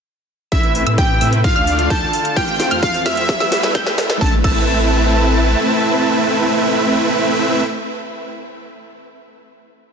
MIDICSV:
0, 0, Header, 1, 8, 480
1, 0, Start_track
1, 0, Key_signature, 0, "minor"
1, 0, Tempo, 461538
1, 540, Time_signature, 4, 2, 24, 8
1, 10325, End_track
2, 0, Start_track
2, 0, Title_t, "Synth pluck"
2, 0, Program_c, 0, 84
2, 540, Note_on_c, 0, 88, 85
2, 871, Note_off_c, 0, 88, 0
2, 900, Note_on_c, 0, 88, 97
2, 1185, Note_off_c, 0, 88, 0
2, 1260, Note_on_c, 0, 88, 79
2, 1438, Note_off_c, 0, 88, 0
2, 1619, Note_on_c, 0, 89, 106
2, 1951, Note_off_c, 0, 89, 0
2, 1980, Note_on_c, 0, 91, 98
2, 2157, Note_off_c, 0, 91, 0
2, 2459, Note_on_c, 0, 89, 83
2, 2791, Note_off_c, 0, 89, 0
2, 2819, Note_on_c, 0, 89, 101
2, 3104, Note_off_c, 0, 89, 0
2, 3179, Note_on_c, 0, 89, 87
2, 3357, Note_off_c, 0, 89, 0
2, 3539, Note_on_c, 0, 88, 110
2, 3871, Note_off_c, 0, 88, 0
2, 3899, Note_on_c, 0, 91, 101
2, 4078, Note_off_c, 0, 91, 0
2, 4380, Note_on_c, 0, 88, 93
2, 4514, Note_off_c, 0, 88, 0
2, 4620, Note_on_c, 0, 88, 96
2, 7922, Note_off_c, 0, 88, 0
2, 10325, End_track
3, 0, Start_track
3, 0, Title_t, "Digital synth lead"
3, 0, Program_c, 1, 84
3, 540, Note_on_c, 1, 76, 100
3, 986, Note_off_c, 1, 76, 0
3, 1020, Note_on_c, 1, 79, 100
3, 1466, Note_off_c, 1, 79, 0
3, 1500, Note_on_c, 1, 77, 104
3, 1980, Note_on_c, 1, 81, 109
3, 1996, Note_off_c, 1, 77, 0
3, 2459, Note_on_c, 1, 79, 116
3, 2475, Note_off_c, 1, 81, 0
3, 2940, Note_on_c, 1, 77, 98
3, 2955, Note_off_c, 1, 79, 0
3, 3174, Note_off_c, 1, 77, 0
3, 3180, Note_on_c, 1, 76, 94
3, 4098, Note_off_c, 1, 76, 0
3, 4379, Note_on_c, 1, 81, 94
3, 4513, Note_off_c, 1, 81, 0
3, 4620, Note_on_c, 1, 81, 107
3, 7922, Note_off_c, 1, 81, 0
3, 10325, End_track
4, 0, Start_track
4, 0, Title_t, "Supersaw synth"
4, 0, Program_c, 2, 81
4, 540, Note_on_c, 2, 57, 76
4, 540, Note_on_c, 2, 60, 71
4, 540, Note_on_c, 2, 64, 72
4, 540, Note_on_c, 2, 71, 74
4, 540, Note_on_c, 2, 76, 88
4, 871, Note_off_c, 2, 57, 0
4, 871, Note_off_c, 2, 60, 0
4, 871, Note_off_c, 2, 64, 0
4, 871, Note_off_c, 2, 71, 0
4, 871, Note_off_c, 2, 76, 0
4, 900, Note_on_c, 2, 57, 87
4, 900, Note_on_c, 2, 60, 79
4, 900, Note_on_c, 2, 64, 79
4, 900, Note_on_c, 2, 71, 76
4, 900, Note_on_c, 2, 76, 93
4, 1184, Note_off_c, 2, 57, 0
4, 1185, Note_off_c, 2, 60, 0
4, 1185, Note_off_c, 2, 64, 0
4, 1185, Note_off_c, 2, 71, 0
4, 1185, Note_off_c, 2, 76, 0
4, 1260, Note_on_c, 2, 57, 75
4, 1260, Note_on_c, 2, 60, 68
4, 1260, Note_on_c, 2, 64, 69
4, 1260, Note_on_c, 2, 71, 70
4, 1260, Note_on_c, 2, 76, 84
4, 1438, Note_off_c, 2, 57, 0
4, 1438, Note_off_c, 2, 60, 0
4, 1438, Note_off_c, 2, 64, 0
4, 1438, Note_off_c, 2, 71, 0
4, 1438, Note_off_c, 2, 76, 0
4, 1619, Note_on_c, 2, 57, 91
4, 1619, Note_on_c, 2, 62, 80
4, 1619, Note_on_c, 2, 65, 81
4, 1619, Note_on_c, 2, 74, 82
4, 1619, Note_on_c, 2, 77, 101
4, 1951, Note_off_c, 2, 57, 0
4, 1951, Note_off_c, 2, 62, 0
4, 1951, Note_off_c, 2, 65, 0
4, 1951, Note_off_c, 2, 74, 0
4, 1951, Note_off_c, 2, 77, 0
4, 1980, Note_on_c, 2, 57, 91
4, 1980, Note_on_c, 2, 62, 81
4, 1980, Note_on_c, 2, 65, 78
4, 1980, Note_on_c, 2, 74, 81
4, 1980, Note_on_c, 2, 79, 98
4, 2157, Note_off_c, 2, 65, 0
4, 2158, Note_off_c, 2, 57, 0
4, 2158, Note_off_c, 2, 62, 0
4, 2158, Note_off_c, 2, 74, 0
4, 2158, Note_off_c, 2, 79, 0
4, 2459, Note_on_c, 2, 57, 79
4, 2459, Note_on_c, 2, 60, 72
4, 2459, Note_on_c, 2, 65, 72
4, 2459, Note_on_c, 2, 72, 73
4, 2459, Note_on_c, 2, 77, 87
4, 2791, Note_off_c, 2, 57, 0
4, 2791, Note_off_c, 2, 60, 0
4, 2791, Note_off_c, 2, 65, 0
4, 2791, Note_off_c, 2, 72, 0
4, 2791, Note_off_c, 2, 77, 0
4, 2819, Note_on_c, 2, 57, 85
4, 2819, Note_on_c, 2, 60, 79
4, 2819, Note_on_c, 2, 65, 75
4, 2819, Note_on_c, 2, 77, 93
4, 2820, Note_on_c, 2, 72, 77
4, 3104, Note_off_c, 2, 57, 0
4, 3104, Note_off_c, 2, 60, 0
4, 3104, Note_off_c, 2, 65, 0
4, 3104, Note_off_c, 2, 72, 0
4, 3104, Note_off_c, 2, 77, 0
4, 3179, Note_on_c, 2, 60, 67
4, 3180, Note_on_c, 2, 57, 73
4, 3180, Note_on_c, 2, 65, 72
4, 3180, Note_on_c, 2, 72, 69
4, 3180, Note_on_c, 2, 77, 84
4, 3357, Note_off_c, 2, 60, 0
4, 3358, Note_off_c, 2, 57, 0
4, 3358, Note_off_c, 2, 65, 0
4, 3358, Note_off_c, 2, 72, 0
4, 3358, Note_off_c, 2, 77, 0
4, 3539, Note_on_c, 2, 57, 90
4, 3539, Note_on_c, 2, 59, 87
4, 3539, Note_on_c, 2, 64, 86
4, 3539, Note_on_c, 2, 71, 84
4, 3539, Note_on_c, 2, 76, 104
4, 3871, Note_off_c, 2, 57, 0
4, 3871, Note_off_c, 2, 59, 0
4, 3871, Note_off_c, 2, 64, 0
4, 3871, Note_off_c, 2, 71, 0
4, 3871, Note_off_c, 2, 76, 0
4, 3899, Note_on_c, 2, 59, 79
4, 3900, Note_on_c, 2, 57, 91
4, 3900, Note_on_c, 2, 64, 80
4, 3900, Note_on_c, 2, 71, 78
4, 3900, Note_on_c, 2, 79, 99
4, 4078, Note_off_c, 2, 57, 0
4, 4078, Note_off_c, 2, 59, 0
4, 4078, Note_off_c, 2, 64, 0
4, 4078, Note_off_c, 2, 71, 0
4, 4078, Note_off_c, 2, 79, 0
4, 4379, Note_on_c, 2, 64, 80
4, 4379, Note_on_c, 2, 71, 84
4, 4379, Note_on_c, 2, 76, 96
4, 4380, Note_on_c, 2, 57, 89
4, 4380, Note_on_c, 2, 60, 83
4, 4514, Note_off_c, 2, 57, 0
4, 4514, Note_off_c, 2, 60, 0
4, 4514, Note_off_c, 2, 64, 0
4, 4514, Note_off_c, 2, 71, 0
4, 4514, Note_off_c, 2, 76, 0
4, 4619, Note_on_c, 2, 57, 83
4, 4619, Note_on_c, 2, 60, 79
4, 4619, Note_on_c, 2, 64, 80
4, 4619, Note_on_c, 2, 71, 77
4, 4619, Note_on_c, 2, 76, 94
4, 7921, Note_off_c, 2, 57, 0
4, 7921, Note_off_c, 2, 60, 0
4, 7921, Note_off_c, 2, 64, 0
4, 7921, Note_off_c, 2, 71, 0
4, 7921, Note_off_c, 2, 76, 0
4, 10325, End_track
5, 0, Start_track
5, 0, Title_t, "Supersaw synth"
5, 0, Program_c, 3, 81
5, 540, Note_on_c, 3, 48, 75
5, 540, Note_on_c, 3, 57, 74
5, 540, Note_on_c, 3, 71, 85
5, 1490, Note_off_c, 3, 48, 0
5, 1490, Note_off_c, 3, 57, 0
5, 1490, Note_off_c, 3, 71, 0
5, 1500, Note_on_c, 3, 50, 77
5, 1500, Note_on_c, 3, 62, 73
5, 1500, Note_on_c, 3, 65, 73
5, 1500, Note_on_c, 3, 69, 85
5, 2450, Note_off_c, 3, 50, 0
5, 2450, Note_off_c, 3, 62, 0
5, 2450, Note_off_c, 3, 69, 0
5, 2460, Note_on_c, 3, 57, 79
5, 2460, Note_on_c, 3, 60, 74
5, 3401, Note_off_c, 3, 65, 0
5, 3410, Note_off_c, 3, 57, 0
5, 3410, Note_off_c, 3, 60, 0
5, 3419, Note_on_c, 3, 52, 76
5, 3419, Note_on_c, 3, 64, 72
5, 3419, Note_on_c, 3, 69, 74
5, 3420, Note_on_c, 3, 71, 89
5, 4367, Note_off_c, 3, 64, 0
5, 4367, Note_off_c, 3, 71, 0
5, 4370, Note_off_c, 3, 52, 0
5, 4370, Note_off_c, 3, 69, 0
5, 4380, Note_on_c, 3, 57, 84
5, 4380, Note_on_c, 3, 60, 93
5, 4380, Note_on_c, 3, 64, 80
5, 4380, Note_on_c, 3, 71, 76
5, 7682, Note_off_c, 3, 57, 0
5, 7682, Note_off_c, 3, 60, 0
5, 7682, Note_off_c, 3, 64, 0
5, 7682, Note_off_c, 3, 71, 0
5, 10325, End_track
6, 0, Start_track
6, 0, Title_t, "Sub bass"
6, 0, Program_c, 4, 38
6, 540, Note_on_c, 4, 33, 97
6, 876, Note_off_c, 4, 33, 0
6, 900, Note_on_c, 4, 45, 93
6, 1236, Note_off_c, 4, 45, 0
6, 1260, Note_on_c, 4, 45, 96
6, 1596, Note_off_c, 4, 45, 0
6, 1620, Note_on_c, 4, 38, 97
6, 1956, Note_off_c, 4, 38, 0
6, 1980, Note_on_c, 4, 38, 95
6, 2134, Note_off_c, 4, 38, 0
6, 2460, Note_on_c, 4, 29, 93
6, 2796, Note_off_c, 4, 29, 0
6, 2819, Note_on_c, 4, 41, 95
6, 3155, Note_off_c, 4, 41, 0
6, 3179, Note_on_c, 4, 41, 100
6, 3515, Note_off_c, 4, 41, 0
6, 3539, Note_on_c, 4, 28, 93
6, 3875, Note_off_c, 4, 28, 0
6, 3900, Note_on_c, 4, 28, 96
6, 4054, Note_off_c, 4, 28, 0
6, 4380, Note_on_c, 4, 33, 98
6, 4514, Note_off_c, 4, 33, 0
6, 4620, Note_on_c, 4, 33, 95
6, 5778, Note_off_c, 4, 33, 0
6, 10325, End_track
7, 0, Start_track
7, 0, Title_t, "Riser"
7, 0, Program_c, 5, 103
7, 540, Note_on_c, 5, 60, 82
7, 4380, Note_off_c, 5, 60, 0
7, 10325, End_track
8, 0, Start_track
8, 0, Title_t, "Drums"
8, 540, Note_on_c, 9, 36, 114
8, 540, Note_on_c, 9, 38, 48
8, 540, Note_on_c, 9, 42, 79
8, 644, Note_off_c, 9, 36, 0
8, 644, Note_off_c, 9, 38, 0
8, 644, Note_off_c, 9, 42, 0
8, 660, Note_on_c, 9, 42, 38
8, 764, Note_off_c, 9, 42, 0
8, 780, Note_on_c, 9, 46, 106
8, 884, Note_off_c, 9, 46, 0
8, 900, Note_on_c, 9, 42, 54
8, 1004, Note_off_c, 9, 42, 0
8, 1019, Note_on_c, 9, 38, 51
8, 1019, Note_on_c, 9, 42, 77
8, 1020, Note_on_c, 9, 36, 110
8, 1123, Note_off_c, 9, 38, 0
8, 1123, Note_off_c, 9, 42, 0
8, 1124, Note_off_c, 9, 36, 0
8, 1260, Note_on_c, 9, 46, 97
8, 1364, Note_off_c, 9, 46, 0
8, 1379, Note_on_c, 9, 42, 54
8, 1483, Note_off_c, 9, 42, 0
8, 1499, Note_on_c, 9, 38, 57
8, 1499, Note_on_c, 9, 42, 78
8, 1500, Note_on_c, 9, 36, 112
8, 1603, Note_off_c, 9, 38, 0
8, 1603, Note_off_c, 9, 42, 0
8, 1604, Note_off_c, 9, 36, 0
8, 1739, Note_on_c, 9, 46, 107
8, 1843, Note_off_c, 9, 46, 0
8, 1859, Note_on_c, 9, 42, 54
8, 1963, Note_off_c, 9, 42, 0
8, 1979, Note_on_c, 9, 38, 68
8, 1979, Note_on_c, 9, 42, 82
8, 1980, Note_on_c, 9, 36, 116
8, 2083, Note_off_c, 9, 38, 0
8, 2083, Note_off_c, 9, 42, 0
8, 2084, Note_off_c, 9, 36, 0
8, 2219, Note_on_c, 9, 46, 111
8, 2323, Note_off_c, 9, 46, 0
8, 2340, Note_on_c, 9, 42, 54
8, 2444, Note_off_c, 9, 42, 0
8, 2459, Note_on_c, 9, 38, 74
8, 2459, Note_on_c, 9, 42, 79
8, 2460, Note_on_c, 9, 36, 122
8, 2563, Note_off_c, 9, 38, 0
8, 2563, Note_off_c, 9, 42, 0
8, 2564, Note_off_c, 9, 36, 0
8, 2580, Note_on_c, 9, 42, 38
8, 2684, Note_off_c, 9, 42, 0
8, 2700, Note_on_c, 9, 38, 77
8, 2700, Note_on_c, 9, 46, 114
8, 2804, Note_off_c, 9, 38, 0
8, 2804, Note_off_c, 9, 46, 0
8, 2820, Note_on_c, 9, 42, 54
8, 2924, Note_off_c, 9, 42, 0
8, 2939, Note_on_c, 9, 38, 85
8, 2939, Note_on_c, 9, 42, 82
8, 2940, Note_on_c, 9, 36, 125
8, 3043, Note_off_c, 9, 38, 0
8, 3043, Note_off_c, 9, 42, 0
8, 3044, Note_off_c, 9, 36, 0
8, 3059, Note_on_c, 9, 46, 65
8, 3163, Note_off_c, 9, 46, 0
8, 3179, Note_on_c, 9, 38, 84
8, 3179, Note_on_c, 9, 46, 101
8, 3283, Note_off_c, 9, 38, 0
8, 3283, Note_off_c, 9, 46, 0
8, 3300, Note_on_c, 9, 42, 54
8, 3404, Note_off_c, 9, 42, 0
8, 3419, Note_on_c, 9, 38, 95
8, 3419, Note_on_c, 9, 42, 80
8, 3420, Note_on_c, 9, 36, 124
8, 3523, Note_off_c, 9, 38, 0
8, 3523, Note_off_c, 9, 42, 0
8, 3524, Note_off_c, 9, 36, 0
8, 3539, Note_on_c, 9, 38, 85
8, 3643, Note_off_c, 9, 38, 0
8, 3659, Note_on_c, 9, 38, 99
8, 3659, Note_on_c, 9, 46, 115
8, 3763, Note_off_c, 9, 38, 0
8, 3763, Note_off_c, 9, 46, 0
8, 3779, Note_on_c, 9, 38, 85
8, 3779, Note_on_c, 9, 42, 55
8, 3883, Note_off_c, 9, 38, 0
8, 3883, Note_off_c, 9, 42, 0
8, 3899, Note_on_c, 9, 38, 103
8, 3899, Note_on_c, 9, 42, 81
8, 3900, Note_on_c, 9, 36, 122
8, 4003, Note_off_c, 9, 38, 0
8, 4003, Note_off_c, 9, 42, 0
8, 4004, Note_off_c, 9, 36, 0
8, 4019, Note_on_c, 9, 38, 94
8, 4123, Note_off_c, 9, 38, 0
8, 4139, Note_on_c, 9, 38, 112
8, 4139, Note_on_c, 9, 46, 117
8, 4243, Note_off_c, 9, 38, 0
8, 4243, Note_off_c, 9, 46, 0
8, 4260, Note_on_c, 9, 38, 95
8, 4260, Note_on_c, 9, 42, 53
8, 4364, Note_off_c, 9, 38, 0
8, 4364, Note_off_c, 9, 42, 0
8, 4380, Note_on_c, 9, 36, 113
8, 4380, Note_on_c, 9, 38, 86
8, 4484, Note_off_c, 9, 36, 0
8, 4484, Note_off_c, 9, 38, 0
8, 4620, Note_on_c, 9, 36, 116
8, 4620, Note_on_c, 9, 49, 91
8, 4724, Note_off_c, 9, 36, 0
8, 4724, Note_off_c, 9, 49, 0
8, 10325, End_track
0, 0, End_of_file